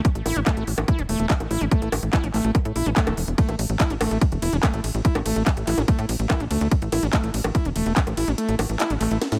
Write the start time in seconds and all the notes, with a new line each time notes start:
0.05 kick, closed hi-hat
0.15 A1, closed hi-hat
0.26 A1 E4, open hi-hat, high bongo
0.36 A1 C4, closed hi-hat
0.46 A3, kick, clap, closed hi-hat
0.57 A1 A3, closed hi-hat
0.67 A1, open hi-hat
0.78 A1, closed hi-hat, high bongo
0.88 E4, kick, closed hi-hat
0.99 E1 C4, closed hi-hat
1.09 E1 A3, open hi-hat
1.19 E1 A3, closed hi-hat
1.30 kick, clap, closed hi-hat
1.40 A1, closed hi-hat, high bongo
1.51 A1 E4, open hi-hat
1.61 A1 C4, closed hi-hat
1.71 A3, kick, closed hi-hat
1.82 A1 A3, closed hi-hat
1.92 A1, open hi-hat, high bongo
2.03 A1, closed hi-hat
2.13 E4, kick, clap, closed hi-hat
2.24 A1 C4, closed hi-hat
2.34 A1 A3, clap, open hi-hat
2.44 A1 A3, closed hi-hat
2.55 kick, closed hi-hat, high bongo
2.65 A2, closed hi-hat
2.76 A#1 E4, open hi-hat
2.86 A1 C4, closed hi-hat
2.96 A3, kick, clap, closed hi-hat
3.07 E1 A3, closed hi-hat, high bongo
3.17 E1, open hi-hat
3.28 E1, closed hi-hat
3.38 A3, kick, closed hi-hat, ride
3.49 A1 A3, closed hi-hat, high bongo
3.59 A1, open hi-hat, ride
3.69 A1, closed hi-hat
3.80 E4, kick, clap, closed hi-hat, ride
3.90 A1 C4, closed hi-hat
4.01 A1 A3, open hi-hat, ride, high bongo
4.11 A1 A3, closed hi-hat
4.21 kick, closed hi-hat, ride
4.32 E1, closed hi-hat
4.42 E1 E4, open hi-hat, ride
4.53 E1 C4, closed hi-hat
4.63 A3, kick, clap, closed hi-hat, ride, high bongo
4.74 A1 A3, closed hi-hat
4.84 A1, open hi-hat, ride
4.94 A1, closed hi-hat
5.05 E4, kick, closed hi-hat, ride
5.15 A1 C4, closed hi-hat, high bongo
5.26 A1 A3, open hi-hat, ride
5.36 A1 A3, closed hi-hat
5.46 kick, clap, closed hi-hat, ride
5.57 A1, closed hi-hat
5.67 A1 E4, clap, open hi-hat, ride
5.78 A1 C4, closed hi-hat, high bongo
5.88 A3, kick, closed hi-hat, ride
5.99 A2 A3, closed hi-hat
6.09 A#1, open hi-hat, ride
6.19 A1, closed hi-hat
6.30 E4, kick, clap, closed hi-hat, ride, high bongo
6.40 A#1 C4, closed hi-hat
6.51 D2 A3, open hi-hat, ride
6.61 D2 A3, closed hi-hat
6.71 kick, closed hi-hat, ride
6.82 A1, closed hi-hat
6.92 A1 E4, open hi-hat, ride, high bongo
7.03 A1 C4, closed hi-hat
7.13 A3, kick, clap, closed hi-hat, ride
7.24 A1 A3, closed hi-hat
7.34 A1, open hi-hat, ride
7.44 A1, closed hi-hat, high bongo
7.55 E4, kick, closed hi-hat, ride
7.65 E1 C4, closed hi-hat
7.76 E1 A3, open hi-hat, ride
7.86 E1 A3, closed hi-hat
7.96 kick, clap, closed hi-hat, ride
8.07 A1, closed hi-hat, high bongo
8.17 A1 E4, open hi-hat, ride
8.28 A1 C4, closed hi-hat
8.38 A3, closed hi-hat, ride
8.49 A1 A3, closed hi-hat
8.59 A1, open hi-hat, ride, high bongo
8.69 A1, closed hi-hat
8.80 E4, clap, closed hi-hat, ride
8.90 A1 C4, closed hi-hat
9.01 A1 A3, clap, open hi-hat, ride
9.11 A1 A3, closed hi-hat
9.21 snare, closed hi-hat, ride, high bongo
9.32 A2, snare, closed hi-hat